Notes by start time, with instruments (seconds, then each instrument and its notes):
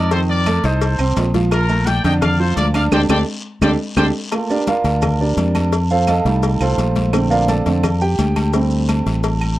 Already playing: fingered electric bass F2, trumpet section A#4 D5
0.11 grand piano D#3 D#4 D#5, trumpet section A4 C5, cowbell, low agogo, long guiro, maracas
0.29 trumpet section A#4 D5, high conga
0.46 grand piano A3 A4 A5, cowbell, high conga, low agogo, short guiro, claves, maracas
0.64 fingered electric bass C2, grand piano D#4 D#5 D#6, trumpet section A4 C5, cowbell, high conga, short guiro, maracas
0.81 cowbell, high conga, low agogo, long guiro, maracas
0.99 fingered electric bass C2, grand piano C4 C5 C6, high conga, low agogo, claves, maracas
1.16 fingered electric bass A#1, cowbell, high conga, low timbale, short guiro, maracas
1.34 grand piano F3 F4 F5, cowbell, high conga, short guiro, maracas
1.51 trumpet section F4 A#4, cowbell, high conga, low agogo, long guiro, claves, maracas
1.69 grand piano A3 A4 A5, high conga, low agogo, maracas
1.87 trumpet section D5 G5, cowbell, high conga, short guiro, maracas
2.04 fingered electric bass F2, grand piano D3 D4 D5, trumpet section D#5 G5, cowbell, high conga, low agogo, short guiro, maracas
2.22 trumpet section D5 F5, cowbell, high conga, low conga, low agogo, long guiro, claves, maracas
2.39 grand piano F3 F4 F5, trumpet section A4 C5, high conga
2.57 fingered electric bass D2, trumpet section A#4 D5, cowbell, high conga, low agogo, short guiro, maracas
2.74 grand piano D4 D5 D6, trumpet section D5 F5, cowbell, high conga, low agogo, short guiro, claves, maracas
2.92 fingered electric bass D2, grand piano D4 G4 A4, trumpet section C5 D5 G5, cowbell, high conga, high timbale, long guiro, claves, maracas
3.09 fingered electric bass D2, grand piano D4 G4 A4, trumpet section C5 D5 G5, cowbell, high conga, high timbale, long guiro, claves, maracas
3.62 fingered electric bass D2, grand piano D4 G4 A4, trumpet section C5 D5 G5, cowbell, high conga, high timbale, long guiro, claves, maracas
3.97 fingered electric bass D2, grand piano D4 G4 A4, trumpet section C5 D5 G5, cowbell, high conga, high timbale, long guiro, claves, maracas
4.32 grand piano A3 A#3 F4, cowbell, high conga, low agogo, claves, maracas
4.50 grand piano D4 G4 A#4 D5, high conga, low agogo, maracas
4.67 grand piano F4 A#4 D5 F5, cowbell, high conga, short guiro, maracas
4.84 fingered electric bass D2, cowbell, high conga, low agogo, short guiro, maracas
5.02 cowbell, high conga, low conga, low agogo, long guiro, claves, maracas
5.20 grand piano D4 G4 A#4 D5, high conga
5.37 fingered electric bass F2, cowbell, high conga, low agogo, short guiro, maracas
5.55 cowbell, high conga, low agogo, short guiro, claves, maracas
5.72 cowbell, high conga, low agogo, long guiro, maracas
5.90 grand piano F4 A4 C5 F5, high conga, maracas
6.07 grand piano A4 D#5 F5 A5, cowbell, high conga, low agogo, short guiro, claves, maracas
6.25 fingered electric bass C2, grand piano G3 A3 D#4, cowbell, short guiro, maracas
6.43 cowbell, high conga, low agogo, long guiro, maracas
6.60 fingered electric bass C2, grand piano F4 A4 C5 F5, high conga, low agogo, claves, maracas
6.78 fingered electric bass A#1, cowbell, high conga, short guiro, maracas
6.96 cowbell, high conga, short guiro, maracas
7.13 grand piano D3 A3 C4, cowbell, high conga, low agogo, long guiro, claves, maracas
7.30 grand piano F4 A#4 D5 F5, high conga, low agogo, maracas
7.48 grand piano A4 D5 F5 A5, cowbell, high conga, short guiro, maracas
7.66 fingered electric bass F2, grand piano D3 A3 C4, cowbell, high conga, low agogo, short guiro, maracas
7.83 cowbell, high conga, low conga, low agogo, long guiro, claves, maracas
8.01 grand piano G4 G5, high conga, maracas
8.19 fingered electric bass D2, cowbell, high conga, low agogo, short guiro, maracas
8.36 cowbell, high conga, low agogo, short guiro, claves, maracas
8.53 grand piano G3 A3 C4, cowbell, low agogo, long guiro, maracas
8.71 high conga, maracas
8.89 cowbell, high conga, low agogo, short guiro, claves, maracas
9.06 fingered electric bass A1, cowbell, high conga, short guiro, maracas
9.24 cowbell, high conga, low agogo, long guiro, maracas
9.41 high conga, low agogo, claves